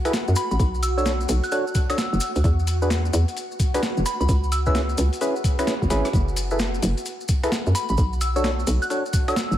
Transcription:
Already playing: ambient pad F#4 F#5
0.05 synth stab E4 G#4 A4 B4, finger snap, closed hi-hat, maracas
0.13 snare, closed hi-hat, maracas
0.28 fm bass F#2, maracas
0.36 synth bell B5, finger snap, closed hi-hat, maracas
0.51 fm bass A1, synth bell B5, maracas
0.59 fm bass B1, kick, closed hi-hat, maracas
0.75 maracas
0.83 synth bell E6, closed hi-hat, maracas
0.97 synth stab D4 F#4 A4 C#5, synth bell E6, maracas
1.06 finger snap, snare, closed hi-hat, maracas
1.21 maracas
1.29 fm bass B1, closed hi-hat, maracas
1.44 synth bell F#6, closed hi-hat, maracas
1.52 synth stab D4 F#4 A4 C#5, synth bell F#6, closed hi-hat, maracas
1.67 maracas
1.75 kick, closed hi-hat, maracas
1.90 synth stab D4 F#4 A4 C#5, synth bell E6, finger snap, closed hi-hat, maracas
1.98 snare, closed hi-hat, maracas
2.13 fm bass F#1, maracas
2.20 finger snap, closed hi-hat, maracas
2.36 fm bass D2, closed hi-hat, maracas
2.44 fm bass E2, kick, closed hi-hat, maracas
2.59 maracas
2.67 closed hi-hat, maracas
2.82 synth stab D4 F#4 G#4 B4, maracas
2.90 finger snap, snare, closed hi-hat, maracas
3.05 maracas
3.13 fm bass E2, closed hi-hat, maracas
3.28 closed hi-hat, maracas
3.37 closed hi-hat, maracas
3.52 maracas
3.60 kick, closed hi-hat, maracas
3.74 synth stab D4 F#4 G#4 B4, finger snap, closed hi-hat, maracas
3.83 snare, closed hi-hat, maracas
3.97 fm bass E1, maracas
4.06 synth bell B5, finger snap, closed hi-hat, maracas
4.21 fm bass C#2, synth bell B5, maracas
4.29 fm bass C#2, kick, closed hi-hat, maracas
4.44 maracas
4.52 synth bell E6, closed hi-hat, maracas
4.66 synth stab C#4 E4 G#4 B4, synth bell E6, kick, maracas
4.75 finger snap, snare, closed hi-hat, maracas
4.89 maracas
4.98 fm bass C#2, closed hi-hat, maracas
5.13 closed hi-hat, maracas
5.21 synth stab C#4 E4 G#4 B4, closed hi-hat, maracas
5.36 maracas
5.44 kick, closed hi-hat, maracas
5.59 synth stab C#4 E4 G#4 B4, finger snap, closed hi-hat, maracas
5.67 snare, closed hi-hat, maracas
5.82 fm bass G#1, kick, maracas
5.90 fm bass G#1, synth stab C#4 E4 G#4 B4, cross-stick, closed hi-hat, maracas
6.05 cross-stick, closed hi-hat, maracas
6.13 fm bass F#1, ambient pad F#4 F#5, kick, closed hi-hat, maracas
6.28 maracas
6.37 closed hi-hat, maracas
6.51 synth stab E4 G#4 A4 B4, maracas
6.59 finger snap, snare, closed hi-hat, maracas
6.74 maracas
6.82 fm bass F#1, closed hi-hat, maracas
6.97 closed hi-hat, maracas
7.06 closed hi-hat, maracas
7.21 maracas
7.28 kick, closed hi-hat, maracas
7.43 synth stab E4 G#4 A4 B4, finger snap, closed hi-hat, maracas
7.52 snare, closed hi-hat, maracas
7.66 fm bass F#2, maracas
7.75 synth bell B5, finger snap, closed hi-hat, maracas
7.89 fm bass A1, synth bell B5, maracas
7.97 fm bass B1, kick, closed hi-hat, maracas
8.13 maracas
8.21 synth bell E6, closed hi-hat, maracas
8.36 synth stab D4 F#4 A4 C#5, synth bell E6, maracas
8.44 finger snap, snare, closed hi-hat, maracas
8.59 maracas
8.67 fm bass B1, closed hi-hat, maracas
8.82 synth bell F#6, closed hi-hat, maracas
8.90 synth stab D4 F#4 A4 C#5, synth bell F#6, closed hi-hat, maracas
9.06 maracas
9.13 kick, closed hi-hat, maracas
9.28 synth stab D4 F#4 A4 C#5, synth bell E6, finger snap, closed hi-hat, maracas
9.36 snare, closed hi-hat, maracas
9.51 fm bass F#1, maracas

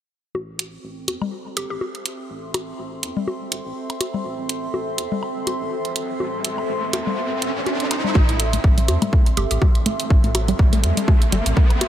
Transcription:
0.35 analog synth bass A1, ambient pad C4, low bongo
0.59 closed hi-hat
0.67 ambient pad A4
0.84 analog synth bass A1
1.08 analog synth bass E2, closed hi-hat, low bongo
1.22 low conga, high woodblock
1.56 analog synth bass G1, synth pluck G4, ambient pad E5, closed hi-hat
1.70 analog synth bass A1, synth pluck G4, ambient pad C6
1.81 low bongo
1.95 closed hi-hat
2.06 closed hi-hat
2.30 analog synth bass A1
2.54 closed hi-hat, low bongo, high woodblock
2.79 analog synth bass A1
3.03 analog synth bass E2, closed hi-hat
3.17 low conga
3.28 low bongo
3.52 analog synth bass G1, closed hi-hat
3.66 analog synth bass A1
3.90 closed hi-hat, high woodblock
4.01 closed hi-hat, low bongo
4.14 low conga
4.25 analog synth bass A1, riser
4.49 closed hi-hat
4.74 analog synth bass A1, low bongo
4.98 analog synth bass E2, closed hi-hat
5.12 low conga
5.23 high woodblock
5.47 analog synth bass G1, closed hi-hat, low bongo
5.61 analog synth bass A1
5.85 closed hi-hat
5.96 closed hi-hat
6.20 analog synth bass A1, low bongo
6.45 closed hi-hat
6.58 high woodblock
6.69 analog synth bass A1
6.93 analog synth bass E2, closed hi-hat, low bongo
7.07 low conga
7.42 analog synth bass G1, closed hi-hat
7.56 analog synth bass A1
7.66 closed hi-hat, low bongo
7.80 closed hi-hat
7.91 closed hi-hat, high woodblock
8.05 low conga
8.15 analog synth bass A1, synth arpeggio sound A3, kick, riser, low bongo
8.29 closed hi-hat
8.40 closed hi-hat
8.53 synth arpeggio sound A3, closed hi-hat
8.64 analog synth bass A1, kick
8.78 synth arpeggio sound G3, closed hi-hat
8.88 analog synth bass E2, closed hi-hat, low bongo
9.02 synth arpeggio sound A3, closed hi-hat, low conga, high woodblock
9.13 kick
9.26 closed hi-hat
9.37 analog synth bass G1, synth arpeggio sound A3, synth pluck G4, closed hi-hat
9.51 analog synth bass A1, synth pluck G4, closed hi-hat
9.62 synth arpeggio sound G3, kick, low bongo
9.75 closed hi-hat
9.86 synth arpeggio sound A3, closed hi-hat
10.00 closed hi-hat
10.10 analog synth bass A1, kick
10.24 synth arpeggio sound A3, closed hi-hat
10.35 closed hi-hat, low bongo, high woodblock
10.48 synth arpeggio sound G3, closed hi-hat
10.59 analog synth bass A1, kick
10.73 synth arpeggio sound A3, closed hi-hat
10.84 analog synth bass E2, closed hi-hat
10.97 closed hi-hat, low conga
11.08 synth arpeggio sound A3, kick, low bongo
11.22 closed hi-hat
11.32 analog synth bass G1, synth arpeggio sound G3, closed hi-hat
11.46 analog synth bass A1, closed hi-hat
11.57 synth arpeggio sound A3, kick
11.70 closed hi-hat, high woodblock
11.81 closed hi-hat, low bongo

